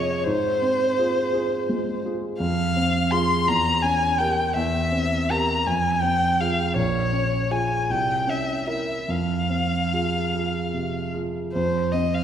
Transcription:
Already playing: F2 C3 C4 F4 G#4 C#5
0.24 G#2 C5
0.62 C4
0.98 F4 G#4
1.33 F4 G#4
1.69 G#3
2.05 F4 G#4
2.40 F2 F5
2.76 C4
3.11 F4 G#4 C6
3.48 E2 A#5
3.82 C#4 G#5
4.19 G4 A#4 G5
4.55 E2 E5
4.92 C4
5.30 G4 A#4 A#5
5.67 F2 G#5
6.03 C4 G5
6.40 F4 G#4 F5
6.75 A#1 C#5
7.12 C#4
7.51 F4 G#4 G#5
7.89 C2 G5
8.27 C#4 E5
8.67 E4 A#4 E5
9.08 F2 F5
9.50 C4
9.93 F4 G#4
10.34 F4 G#4
10.73 C3
11.13 F4 G#4
11.52 F2 C5
11.92 C4 D#5
12.14 F5

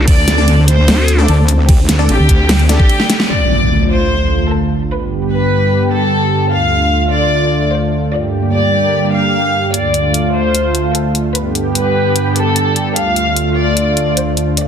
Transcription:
Already playing: D3 A3
0.07 D2 C4 D5, kick, ride
0.28 snare, closed hi-hat
0.38 D4 A4 D5
0.48 ride
0.68 C5, closed hi-hat
0.88 D2, snare, ride
1.08 closed hi-hat
1.18 D4 A4 D5
1.28 D2 A4, ride
1.48 closed hi-hat
1.69 G4, kick, ride
1.89 D2, snare, closed hi-hat
1.99 D4 A4 D5
2.09 A1 G4, ride
2.19 D2
2.29 kick, closed hi-hat
2.49 snare, ride
2.59 closed hi-hat
2.69 D4 G4 A4 D5, snare, closed hi-hat
2.79 kick
2.89 ride
3.00 snare
3.10 snare, closed hi-hat
3.20 snare
3.30 D2 D3 A3 F4 D5, impact
3.90 C5
4.51 A4
4.91 G2 B3 G4 B4
5.31 B4
5.91 A4
6.52 D2 A3 F4 F5
7.12 D5
7.73 C5
8.13 G2 D3 A#3 G4 D5
8.53 D5
9.14 F5
9.74 D2 D3 A3 F4 D5, closed hi-hat
9.94 closed hi-hat
10.14 closed hi-hat
10.34 C5
10.55 closed hi-hat
10.75 closed hi-hat
10.95 A4, closed hi-hat
11.15 closed hi-hat
11.35 G2 B3 G4 B4, closed hi-hat
11.55 closed hi-hat
11.75 B4, closed hi-hat
12.16 closed hi-hat
12.36 A4, closed hi-hat
12.56 closed hi-hat
12.76 closed hi-hat
12.96 D2 A3 F4 F5, closed hi-hat
13.16 closed hi-hat
13.36 closed hi-hat
13.57 D5
13.77 closed hi-hat
13.97 closed hi-hat
14.17 C5, closed hi-hat
14.37 closed hi-hat
14.57 G2 A#3 G4 D5, closed hi-hat

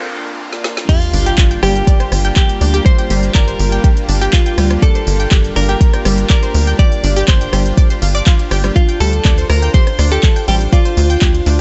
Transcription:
Already playing: A#3 D4 F4, noise sweep
0.53 snare
0.64 snare
0.77 snare
0.89 G3 A#3 D4 F4 G4 F5, kick, closed hi-hat, crash, sub drop
1.02 closed hi-hat
1.13 G1 D4, open hi-hat
1.26 G4, closed hi-hat
1.38 G1, kick, clap, closed hi-hat
1.51 G5, closed hi-hat
1.63 G1 G3 G4 G5, cross-stick, open hi-hat
1.75 closed hi-hat
1.87 D5, kick, closed hi-hat
2.00 C5, cross-stick, closed hi-hat
2.12 G1, cross-stick, open hi-hat
2.25 G5, closed hi-hat
2.36 G4 G5, kick, clap, closed hi-hat
2.49 closed hi-hat
2.61 D2 D4, open hi-hat
2.74 G4, closed hi-hat
2.86 C5 C6, kick, closed hi-hat
2.98 G5, closed hi-hat
3.10 G1 G3, open hi-hat
3.23 closed hi-hat
3.35 G1 A#4 D5 A#5, kick, clap, closed hi-hat
3.48 C5, closed hi-hat
3.59 G1, open hi-hat
3.72 G5, closed hi-hat
3.84 G4, kick, closed hi-hat
3.97 closed hi-hat
4.09 G1 D4, open hi-hat
4.21 G4, closed hi-hat
4.33 F4 F5, kick, clap, closed hi-hat
4.46 G5, closed hi-hat
4.58 D2 G3, cross-stick, open hi-hat
4.71 cross-stick, closed hi-hat
4.82 A4 D5 A5, kick, closed hi-hat
4.95 C5, closed hi-hat
5.07 G1, open hi-hat
5.20 G5, closed hi-hat
5.31 G1 G4, kick, clap, closed hi-hat
5.44 closed hi-hat
5.56 G1 D4 A#4 A#5, open hi-hat
5.69 G4, closed hi-hat
5.81 kick, closed hi-hat
5.93 G5, cross-stick, closed hi-hat
6.05 G1 G3, cross-stick, open hi-hat
6.18 closed hi-hat
6.30 A#4 D5 A#5, kick, clap, closed hi-hat
6.43 C5, closed hi-hat
6.54 D2, open hi-hat
6.67 G5, closed hi-hat
6.79 G4 D5 D6, kick, closed hi-hat
6.92 closed hi-hat
7.04 G1 D4, open hi-hat
7.16 G4, closed hi-hat
7.28 G1 C5 C6, kick, clap, closed hi-hat
7.41 G5, closed hi-hat
7.53 G1 G3, cross-stick, open hi-hat
7.66 closed hi-hat
7.77 D5, kick, closed hi-hat
7.90 C5, closed hi-hat
8.02 G1 F4, open hi-hat
8.15 D5, closed hi-hat
8.26 F4, kick, clap, closed hi-hat
8.39 closed hi-hat
8.51 G1 G4, cross-stick, open hi-hat
8.64 G3, cross-stick, closed hi-hat
8.76 F4 C5 F5, kick, closed hi-hat
8.89 G5, closed hi-hat
9.00 D2 G3 A4 A5, open hi-hat
9.13 closed hi-hat
9.25 D2 D5, kick, clap, closed hi-hat
9.38 C5, closed hi-hat
9.49 D2 A#4 A#5, cross-stick, open hi-hat
9.62 G5, closed hi-hat
9.74 G4 C5 C6, kick, closed hi-hat
9.87 cross-stick, closed hi-hat
9.99 D2 D4, cross-stick, open hi-hat
10.12 G4 A4 A5, closed hi-hat
10.23 kick, clap, closed hi-hat
10.36 G5, closed hi-hat
10.48 A1 G3 G4 G5, open hi-hat
10.61 closed hi-hat
10.73 F4 D5 F5, kick, closed hi-hat
10.85 C5, closed hi-hat
10.97 D2, open hi-hat
11.10 G5, closed hi-hat
11.22 D2 G4, kick, clap, closed hi-hat
11.35 closed hi-hat
11.46 D2 D4, open hi-hat

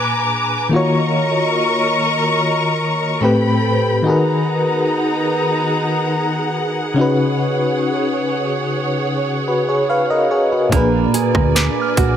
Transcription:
Already playing: A#2 A#3 D4 G#4 B4 G#5 A#5 D6
0.69 D#3 A#3 F4 A#4 D#5 A#5 C#6
0.75 F#4 C#5
3.21 A2 A3 C4 G4 A4 B4 G5 B5
4.03 D#3 B3 D#4 F#4 G#4 F#5 A#5
4.07 G#4 A#4 B4
6.94 C#3 C#4 D#4 C#5
6.99 F#4 B4
9.48 F#4 B4
9.69 G#4 C#5
9.90 B4 F5
10.10 A#4 D#5
10.31 G#4 C#5
10.52 F#4 B4
10.69 A#1 A#2 A#3 D4 D5 G#5, kick, closed hi-hat
10.75 G#4 B4
11.14 G#4, closed hi-hat
11.35 D2, kick, cross-stick
11.55 B4 D6, snare, closed hi-hat
11.81 F6
11.97 A#1 F#4, kick, closed hi-hat

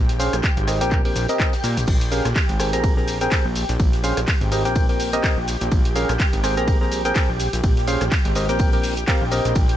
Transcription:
Already playing: A#1 G4 G5
0.09 snare, closed hi-hat
0.19 C#4 G#4 C5 F5, open hi-hat, tambourine, shaker
0.33 A#1, cross-stick, closed hi-hat, shaker
0.43 kick, snare, clap, tambourine, shaker
0.57 G#1, closed hi-hat
0.68 C4 G4 A#4 D#5, cross-stick, open hi-hat, tambourine, shaker
0.81 A#1 C4 G4 A#4 G5, snare, closed hi-hat, shaker
0.91 kick, clap, tambourine, shaker
1.05 C4 G4 A#4 G5, open hi-hat
1.16 A#1, open hi-hat, tambourine, shaker
1.28 C4 G4 A#4 D#5, closed hi-hat, tambourine, shaker
1.40 kick, snare, clap, tambourine, shaker
1.53 snare, closed hi-hat, tambourine
1.63 A#2, snare, open hi-hat, tambourine, shaker
1.77 A#1, snare, closed hi-hat, tambourine, shaker
1.87 A#1 G4 G5, kick, crash, ride, tambourine, shaker
2.01 closed hi-hat
2.11 C#4 G#4 A#4 F5, open hi-hat, tambourine, shaker
2.25 A#1, cross-stick, snare, closed hi-hat, shaker
2.36 kick, snare, clap, ride, tambourine, shaker
2.49 G#1, closed hi-hat
2.60 C4 G#4 A#4 G5, cross-stick, open hi-hat, tambourine, shaker
2.73 A#1 C4 G#4 A#4 A#5, closed hi-hat, shaker
2.83 kick, ride, tambourine, shaker
2.97 C4 G#4 A#4 A#5, snare
3.08 open hi-hat, tambourine, shaker
3.21 C4 G#4 A#4 G5, closed hi-hat, shaker
3.31 kick, snare, clap, ride, tambourine, shaker
3.45 A#1
3.56 open hi-hat, tambourine, shaker
3.69 A#1, snare, closed hi-hat, shaker
3.80 A#1, kick, ride, tambourine, shaker
3.93 snare, closed hi-hat
4.04 C#4 G#4 C5 F5, open hi-hat, tambourine, shaker
4.17 A#1, cross-stick, closed hi-hat, shaker
4.27 kick, snare, clap, ride, tambourine, shaker
4.41 G#1, closed hi-hat
4.52 C4 G4 A#4 D#5, open hi-hat, tambourine, shaker
4.65 A#1 C4 G4 A#4 G5, snare, closed hi-hat, shaker
4.75 kick, ride, tambourine, shaker
4.89 C4 G4 A#4 G5, closed hi-hat, open hi-hat
5.00 open hi-hat, shaker
5.13 C4 G4 A#4 D#5, closed hi-hat, shaker
5.24 kick, snare, clap, ride, tambourine, shaker
5.37 A#1
5.48 open hi-hat, tambourine, shaker
5.61 A#1, closed hi-hat, shaker
5.71 A#1, kick, ride, tambourine, shaker
5.85 closed hi-hat
5.96 C#4 G#4 A#4 F5, open hi-hat, tambourine, shaker
6.09 A#1, cross-stick, snare, closed hi-hat, shaker
6.19 kick, snare, clap, ride, tambourine, shaker
6.33 G#1, closed hi-hat
6.44 C4 G#4 A#4 G5, cross-stick, open hi-hat, tambourine, shaker
6.57 A#1 C4 G#4 A#4 A#5, closed hi-hat, shaker
6.67 kick, ride, tambourine, shaker
6.81 C4 G#4 A#4 A#5, snare
6.92 open hi-hat, tambourine, shaker
7.05 C4 G#4 A#4 G5, closed hi-hat, shaker
7.15 kick, snare, clap, ride, tambourine, shaker
7.29 A#1
7.39 open hi-hat, tambourine, shaker
7.53 A#1, snare, closed hi-hat, shaker
7.64 A#1, kick, ride, tambourine, shaker
7.77 snare, closed hi-hat
7.87 C#4 G#4 C5 F5, open hi-hat, tambourine, shaker
8.01 A#1, cross-stick, closed hi-hat, shaker
8.12 kick, snare, clap, ride, tambourine, shaker
8.25 G#1, closed hi-hat
8.35 C4 G4 A#4 D#5, open hi-hat, tambourine, shaker
8.49 A#1 C4 G4 A#4 G5, snare, closed hi-hat, shaker
8.59 kick, ride, tambourine, shaker
8.72 C4 G4 A#4 G5, closed hi-hat, open hi-hat
8.83 open hi-hat, shaker
8.96 closed hi-hat, shaker
9.07 C4 G4 A#4 F5, kick, snare, clap, ride, tambourine, shaker
9.21 A#1
9.31 C4 G4 A#4 D#5, open hi-hat, tambourine, shaker
9.45 A#1, closed hi-hat, shaker
9.55 A#1, kick, ride, tambourine, shaker
9.69 closed hi-hat

